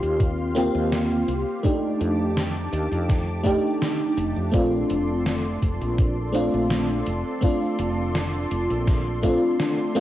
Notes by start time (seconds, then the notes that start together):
Already playing: A#3 C4 F4 G4 F5 C6
0.02 D#2, closed hi-hat
0.20 kick, closed hi-hat
0.55 A#3 C4 F4 G4, closed hi-hat
0.75 D#2
0.92 snare, closed hi-hat
1.28 C2, closed hi-hat
1.63 A3 D4 D#4 G4 A5 D6, kick, closed hi-hat
2.01 F2, closed hi-hat
2.37 snare, closed hi-hat
2.73 D#2, closed hi-hat
2.91 F2, closed hi-hat
3.09 kick, snare, closed hi-hat
3.43 A3 D4 D#4 G4, kick, closed hi-hat
3.82 snare, closed hi-hat
4.17 F1, closed hi-hat
4.36 F2
4.52 A#1 A3 C4 D4 F4 A4 D5 C6, kick, closed hi-hat
4.90 F1, closed hi-hat
5.26 snare, closed hi-hat
5.62 F1, kick, closed hi-hat
5.81 A#1, closed hi-hat
5.98 kick, closed hi-hat
6.32 A3 C4 D4 F4, closed hi-hat
6.54 A#1
6.70 snare, closed hi-hat
7.06 F1, closed hi-hat
7.41 A3 C4 D4 F4, kick, closed hi-hat
7.79 F1, closed hi-hat
8.15 snare, closed hi-hat
8.51 F1, closed hi-hat
8.70 A#1, closed hi-hat
8.87 kick, snare, closed hi-hat
9.23 A3 C4 D4 F4, kick, closed hi-hat
9.60 snare, closed hi-hat
9.95 A3 C4 D4 F4, closed hi-hat